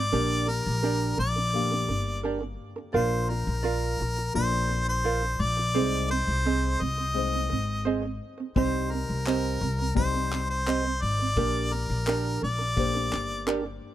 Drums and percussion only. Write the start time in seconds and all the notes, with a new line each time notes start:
8.56 kick
9.26 clap
9.97 kick
10.32 clap
10.67 clap
11.37 kick
12.07 clap
12.77 kick
13.13 clap
13.48 clap